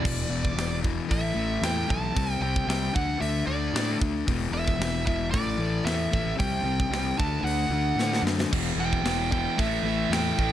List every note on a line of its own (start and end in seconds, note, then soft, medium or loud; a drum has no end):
0.00 0.28 E2 medium
0.00 0.28 B2 loud
0.00 0.78 D5 loud
0.04 0.25 E1 loud
0.04 0.29 E3 loud
0.04 kick loud
0.04 crash loud
0.29 0.50 E1 medium
0.29 0.54 E2 medium
0.29 0.55 B2 medium
0.29 0.55 E3 medium
0.45 kick medium
0.55 0.98 E1 medium
0.55 0.81 E2 medium
0.55 0.82 B2 medium
0.55 0.82 E3 medium
0.55 snare loud
0.55 open hi-hat medium
0.82 1.07 E2 medium
0.82 1.08 B2 loud
0.82 1.07 E3 loud
0.82 kick medium
1.08 1.31 A1 medium
1.08 1.33 A2 loud
1.08 1.34 E3 loud
1.08 1.34 A3 loud
1.08 1.65 E5 loud
1.08 kick loud
1.08 open hi-hat medium
1.34 1.57 A1 medium
1.34 1.62 A2 medium
1.34 1.62 E3 medium
1.34 1.62 A3 medium
1.62 1.83 E2 medium
1.62 1.86 A2 medium
1.62 1.87 E3 medium
1.62 1.87 A3 medium
1.62 1.90 G5 loud
1.62 snare loud
1.62 open hi-hat medium
1.87 2.10 B1 medium
1.87 2.13 A2 medium
1.87 2.13 E3 loud
1.87 2.13 A3 loud
1.87 2.42 A5 loud
1.87 kick medium
2.15 2.37 C2 loud
2.15 2.42 C3 loud
2.15 2.43 G3 loud
2.15 2.42 C4 loud
2.15 kick loud
2.15 open hi-hat medium
2.40 2.62 C2 medium
2.40 2.66 C3 medium
2.40 2.67 G3 loud
2.40 2.67 C4 medium
2.40 2.66 G5 loud
2.56 kick medium
2.67 2.89 C2 medium
2.67 2.93 C3 medium
2.67 2.93 G3 medium
2.67 2.93 C4 loud
2.67 2.95 G5 loud
2.67 snare loud
2.67 open hi-hat medium
2.93 3.16 D2 medium
2.93 3.18 D3 loud
2.93 3.19 A3 loud
2.93 3.19 D4 loud
2.93 3.19 F#5 loud
2.93 kick loud
3.19 3.42 D2 loud
3.19 3.47 D3 medium
3.19 3.47 A3 loud
3.19 3.47 D4 loud
3.19 3.46 E5 medium
3.19 open hi-hat medium
3.47 3.68 D2 medium
3.47 3.73 D3 medium
3.47 3.73 A3 loud
3.47 3.73 D4 loud
3.47 3.96 D5 medium
3.73 3.95 A2 medium
3.73 4.00 D3 medium
3.73 4.00 A3 loud
3.73 4.00 D4 medium
3.73 snare loud
3.73 open hi-hat medium
4.01 4.22 D2 loud
4.01 4.25 D3 loud
4.01 4.26 A3 medium
4.01 4.26 D4 loud
4.01 kick medium
4.26 4.48 E1 loud
4.26 4.52 E2 medium
4.26 4.52 B2 loud
4.26 4.52 E3 loud
4.26 kick loud
4.26 open hi-hat medium
4.51 4.73 E1 medium
4.51 4.78 E2 medium
4.51 4.79 B2 loud
4.51 4.79 E3 loud
4.51 5.03 E5 loud
4.68 kick medium
4.79 5.33 E1 medium
4.79 5.05 E2 medium
4.79 5.05 B2 medium
4.79 5.06 E3 loud
4.79 snare loud
4.79 open hi-hat medium
5.06 5.31 E2 medium
5.06 5.31 B2 loud
5.06 5.31 E3 medium
5.06 5.30 E5 medium
5.06 kick medium
5.31 5.54 A1 loud
5.31 5.57 A2 loud
5.31 5.57 E3 medium
5.31 5.59 A3 loud
5.31 5.85 D5 medium
5.31 kick loud
5.31 open hi-hat medium
5.58 5.79 A1 medium
5.58 5.84 A2 medium
5.58 5.85 E3 medium
5.58 5.86 A3 loud
5.84 6.06 E2 medium
5.84 6.11 A2 medium
5.84 6.11 E3 medium
5.84 6.11 A3 loud
5.84 6.35 E5 medium
5.84 snare loud
5.84 open hi-hat medium
6.12 6.34 A1 medium
6.12 6.37 A2 medium
6.12 6.37 E3 medium
6.12 6.37 A3 loud
6.12 kick medium
6.37 6.60 C2 loud
6.37 6.64 C3 medium
6.37 6.64 G3 loud
6.37 6.65 C4 loud
6.37 7.18 G5 loud
6.37 kick loud
6.37 open hi-hat medium
6.63 6.85 C2 medium
6.63 6.90 C3 medium
6.63 6.91 G3 medium
6.63 6.91 C4 medium
6.80 kick medium
6.90 7.12 C2 medium
6.90 7.16 C3 medium
6.90 7.17 G3 loud
6.90 7.17 C4 loud
6.90 snare loud
6.90 open hi-hat medium
7.17 7.40 D2 medium
7.17 7.43 D3 loud
7.17 7.44 A3 loud
7.17 7.45 D4 loud
7.17 7.43 A5 loud
7.17 kick loud
7.43 7.65 D2 medium
7.43 7.71 D3 loud
7.43 7.71 A3 loud
7.43 7.72 D4 loud
7.43 8.20 F#5 loud
7.47 open hi-hat medium
7.69 7.91 D2 medium
7.69 7.98 D3 medium
7.69 7.98 A3 medium
7.69 7.99 D4 medium
7.96 8.18 A2 medium
7.96 8.22 D3 medium
7.96 8.23 A3 medium
7.96 snare medium
8.00 8.24 D4 loud
8.13 snare medium
8.22 8.45 F#2 medium
8.22 8.49 D3 medium
8.22 8.50 A3 loud
8.22 8.50 D4 medium
8.27 snare loud
8.40 snare loud
8.51 8.74 E1 loud
8.51 8.76 E2 loud
8.51 8.76 B2 loud
8.51 8.77 E3 loud
8.51 kick loud
8.51 crash loud
8.76 8.98 E1 medium
8.76 9.03 E2 medium
8.76 9.03 B2 medium
8.76 9.03 E3 medium
8.80 9.30 G5 loud
8.93 kick medium
9.03 9.46 E1 medium
9.03 9.30 E2 medium
9.03 9.31 B2 medium
9.03 9.31 E3 medium
9.03 snare loud
9.03 open hi-hat medium
9.31 9.56 E2 medium
9.31 9.57 B2 medium
9.31 9.57 E3 loud
9.31 9.59 G5 loud
9.31 kick medium
9.57 9.79 A1 loud
9.57 9.83 A2 medium
9.57 9.83 E3 loud
9.57 9.83 A3 loud
9.57 10.13 E5 loud
9.57 kick loud
9.57 open hi-hat medium
9.83 10.05 A1 medium
9.83 10.09 A2 medium
9.83 10.10 E3 loud
9.83 10.10 A3 loud
10.10 10.31 E2 medium
10.10 10.36 A2 medium
10.10 10.37 E3 loud
10.10 10.37 A3 loud
10.10 10.52 G5 loud
10.10 snare loud
10.10 open hi-hat medium
10.37 10.52 A1 medium
10.37 10.52 A2 medium
10.37 10.52 E3 loud
10.37 10.52 A3 loud
10.37 kick medium